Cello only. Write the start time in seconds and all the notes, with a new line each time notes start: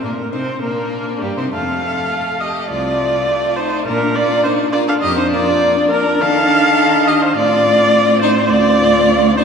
0.04 A#2
0.33 C3
0.61 A#2
1.22 G2
1.38 C3
1.53 F2
2.70 C2
3.86 A#2
5.02 F2
6.20 D#3
7.36 A2
8.50 D2